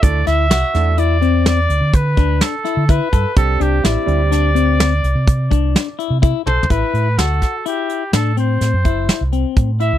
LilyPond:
<<
  \new Staff \with { instrumentName = "Trumpet" } { \time 7/4 \key a \dorian \tempo 4 = 126 d''8 e''4. d''4 d''4 b'4 a'4 b'4 | a'8 g'8 d''1~ d''4 r8 c''8 | b'4 a'4 g'4 a'8 c''2 r4 e''8 | }
  \new Staff \with { instrumentName = "Clean electric guitar" } { \time 7/4 \key a \dorian r8 e'8 fis'4 e'8 c'4 r4 d'4 e'8 e'8 a'8 | r8 d'8 e'4 d'8 c'4 r4 d'4 e'8 e'8 a'8 | e'4 fis'4 e'4 d'8 c'4 e'4 c'4 e'8 | }
  \new Staff \with { instrumentName = "Grand piano" } { \time 7/4 \key a \dorian <a d' e' a'>8 r4 <a d' e' a'>8 r1 r4 | <g c' d' g'>4. <g c' d' g'>4. r1 | r1. r4 | }
  \new Staff \with { instrumentName = "Fingered electric bass" } { \clef bass \time 7/4 \key a \dorian d,8 d,8 c,16 r16 e,2 d,16 d8. d,8 r8. d8 r16 g,16 r16 | c,8 c,8 a,,16 r16 d,2 c,16 c8. c,8 r8. c8 r16 b,,16 r16 | a,,16 r16 a,8 d,8 r4. a,4 a,16 fis,16 fis,,8 r16 c,8 r16 a,8. cis,16 | }
  \new DrumStaff \with { instrumentName = "Drums" } \drummode { \time 7/4 <hh bd>8 <hh sn>8 <hh sn>8 <hh sn>8 hh8 hh8 <hh sn>8 hh8 <hh bd>8 <hh bd>8 <hh sn>8 <hh sn>8 <hh bd>8 <hh bd>8 | <hh bd>8 hh8 <hh sn>8 hh8 <hh sn>8 hh8 <hh sn>8 hh8 <hh bd>8 <hh bd>8 <hh sn>8 hh8 \tuplet 3/2 { <hh bd>16 r16 r16 tommh16 r16 tomfh16 } | <hh bd>8 hh8 <hh sn>8 <hh bd sn>8 hh8 hh8 <hh sn>8 hh8 <hh sn>8 <hh bd>8 <hh sn>8 hh8 <hh bd>8 hh8 | }
>>